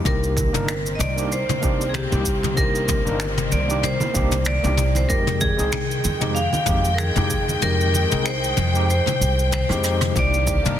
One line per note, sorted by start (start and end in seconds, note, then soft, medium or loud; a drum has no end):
0.03 0.46 C2 medium
0.03 5.06 D#3 medium
0.03 0.49 A#3 medium
0.03 5.06 A#3 medium
0.03 5.06 C4 medium
0.03 0.50 D4 medium
0.03 0.50 D#4 medium
0.03 0.51 G4 medium
0.03 0.97 A#4 medium
0.03 kick loud
0.03 mid tom medium
0.03 cabasa medium
0.23 cabasa soft
0.37 kick loud
0.37 high conga medium
0.37 cabasa medium
0.53 0.93 G1 medium
0.53 0.70 A#3 medium
0.53 0.70 D4 medium
0.53 0.71 D#4 medium
0.53 0.71 A#4 medium
0.53 mid tom medium
0.53 cabasa soft
0.68 finger snap medium
0.68 cabasa medium
0.86 cabasa soft
0.95 1.41 C2 medium
0.95 1.01 D#5 medium
0.95 high conga medium
1.00 1.33 D5 medium
1.00 mid tom medium
1.00 cabasa medium
1.16 1.33 A#3 medium
1.16 1.34 D4 medium
1.16 1.34 D#4 medium
1.16 1.34 G4 medium
1.16 cabasa soft
1.32 1.91 C5 medium
1.32 cabasa medium
1.49 mid tom medium
1.49 high conga medium
1.49 low conga medium
1.49 cabasa soft
1.61 2.04 C2 medium
1.61 1.82 A#3 medium
1.61 1.82 D4 medium
1.61 1.83 D#4 medium
1.61 1.83 G4 medium
1.61 kick loud
1.61 cabasa medium
1.81 cabasa soft
1.89 1.95 G#4 medium
1.94 2.54 G4 medium
1.94 finger snap medium
1.94 mid tom medium
1.94 high conga medium
1.94 cabasa medium
2.10 2.51 C2 loud
2.10 2.27 A#3 medium
2.10 2.28 D4 medium
2.10 2.29 D#4 medium
2.10 2.29 G4 medium
2.10 low conga medium
2.10 cabasa soft
2.25 kick medium
2.25 cabasa medium
2.43 mid tom medium
2.43 high conga medium
2.43 cabasa soft
2.55 2.99 C2 medium
2.55 3.02 A#3 medium
2.55 3.02 D4 medium
2.55 3.02 D#4 medium
2.55 3.03 G4 medium
2.55 3.55 A#4 medium
2.55 kick loud
2.55 cabasa medium
2.75 cabasa soft
2.88 kick loud
2.88 mid tom medium
2.88 high conga medium
2.88 cabasa medium
3.05 3.46 G1 medium
3.05 3.22 A#3 medium
3.05 3.23 D4 medium
3.05 3.23 D#4 medium
3.05 3.24 A#4 medium
3.05 cabasa soft
3.20 finger snap medium
3.20 cabasa medium
3.38 mid tom medium
3.38 cabasa soft
3.51 3.93 C2 medium
3.51 3.85 D5 medium
3.51 high conga medium
3.51 cabasa medium
3.67 3.85 A#3 medium
3.67 3.86 D4 medium
3.67 3.86 D#4 medium
3.67 3.87 G4 medium
3.67 cabasa soft
3.83 4.43 C5 medium
3.83 mid tom medium
3.83 cabasa soft
4.00 high conga medium
4.00 low conga medium
4.00 cabasa soft
4.14 4.57 C2 medium
4.14 4.34 A#3 medium
4.14 4.35 D4 medium
4.14 4.35 D#4 medium
4.14 4.36 G4 loud
4.14 kick loud
4.14 cabasa medium
4.32 mid tom medium
4.32 cabasa soft
4.45 4.98 D5 loud
4.45 finger snap medium
4.45 high conga medium
4.45 cabasa medium
4.63 5.04 C2 loud
4.63 4.80 A#3 medium
4.63 4.81 D4 medium
4.63 4.81 D#4 medium
4.63 4.82 G4 medium
4.63 low conga medium
4.63 cabasa soft
4.77 mid tom medium
4.77 cabasa medium
4.95 5.09 C5 medium
4.95 high conga medium
4.95 cabasa medium
5.08 5.51 F2 medium
5.08 10.11 D#3 medium
5.08 5.54 G#3 medium
5.08 10.11 G#3 medium
5.08 5.54 C4 medium
5.08 5.55 D#4 medium
5.08 5.56 G4 medium
5.08 5.42 A#4 medium
5.08 10.11 G5 medium
5.08 kick loud
5.08 cabasa medium
5.27 mid tom medium
5.27 cabasa soft
5.41 6.39 G#4 loud
5.41 kick medium
5.41 high conga medium
5.41 cabasa medium
5.57 5.98 C2 medium
5.57 5.74 G#3 medium
5.57 5.75 C4 medium
5.57 5.75 D#4 medium
5.57 5.76 G#4 loud
5.57 cabasa soft
5.72 finger snap loud
5.72 mid tom medium
5.72 cabasa medium
5.91 cabasa soft
6.04 6.46 F2 medium
6.04 high conga medium
6.04 cabasa medium
6.20 6.38 G#3 medium
6.20 6.38 C4 medium
6.20 6.39 D#4 medium
6.20 6.39 G4 medium
6.20 mid tom medium
6.20 cabasa soft
6.35 6.94 F5 loud
6.35 cabasa medium
6.53 high conga medium
6.53 low conga medium
6.53 cabasa soft
6.66 7.09 F2 medium
6.66 6.87 G#3 medium
6.66 6.87 C4 medium
6.66 6.88 D#4 medium
6.66 6.88 G4 medium
6.66 kick loud
6.66 mid tom medium
6.66 cabasa medium
6.85 cabasa soft
6.94 7.64 G#4 medium
6.94 7.00 A#4 medium
6.98 finger snap medium
6.98 high conga medium
6.98 cabasa medium
7.15 7.56 F2 loud
7.15 7.33 G#3 medium
7.15 7.33 C4 medium
7.15 7.33 D#4 medium
7.15 7.34 G4 medium
7.15 mid tom medium
7.15 low conga medium
7.15 cabasa soft
7.30 kick medium
7.30 cabasa medium
7.48 high conga medium
7.48 cabasa soft
7.60 8.04 F2 medium
7.60 8.07 G#3 medium
7.60 8.07 C4 medium
7.60 8.08 D#4 medium
7.60 8.08 G4 medium
7.60 8.22 A#4 loud
7.60 mid tom medium
7.60 cabasa medium
7.81 cabasa soft
7.94 high conga medium
7.94 cabasa medium
8.10 8.51 C2 medium
8.10 8.27 G#3 medium
8.10 8.28 C4 medium
8.10 8.28 D#4 medium
8.10 8.29 G#4 loud
8.10 mid tom medium
8.10 cabasa soft
8.26 8.89 C5 medium
8.26 finger snap medium
8.26 cabasa medium
8.44 cabasa soft
8.57 8.99 F2 loud
8.57 mid tom medium
8.57 high conga medium
8.57 cabasa medium
8.73 8.91 G#3 medium
8.73 8.91 C4 medium
8.73 8.92 D#4 medium
8.73 8.92 G4 loud
8.73 cabasa soft
8.90 9.53 C5 medium
8.90 cabasa soft
9.06 mid tom medium
9.06 high conga medium
9.06 low conga medium
9.06 cabasa soft
9.21 9.62 C2 medium
9.21 cabasa medium
9.39 cabasa soft
9.51 10.18 C5 medium
9.51 finger snap loud
9.51 mid tom medium
9.51 high conga medium
9.51 cabasa medium
9.69 10.09 F2 medium
9.69 9.81 G#3 medium
9.69 9.82 C4 medium
9.69 9.82 D#4 medium
9.69 9.83 G4 medium
9.69 cross-stick medium
9.69 low conga medium
9.69 cabasa soft
9.83 10.12 G#3 medium
9.83 10.12 C4 medium
9.83 10.12 D#4 medium
9.83 10.13 G4 medium
9.83 cross-stick medium
9.83 cabasa medium
10.01 cross-stick medium
10.01 mid tom medium
10.01 high conga medium
10.01 cabasa medium
10.14 10.57 C2 medium
10.14 10.79 D#3 medium
10.14 10.60 A#3 medium
10.14 10.79 A#3 medium
10.14 10.60 D4 medium
10.14 10.61 D#4 medium
10.14 10.79 G4 medium
10.14 10.61 G4 medium
10.14 kick loud
10.14 mid tom medium
10.14 cabasa medium
10.19 10.79 D5 loud
10.34 cabasa soft
10.47 kick loud
10.47 cabasa medium
10.63 10.79 G1 medium
10.63 10.79 A#3 medium
10.63 10.79 D4 medium
10.63 10.79 D#4 medium
10.63 10.79 A#4 loud
10.63 mid tom medium
10.63 cabasa medium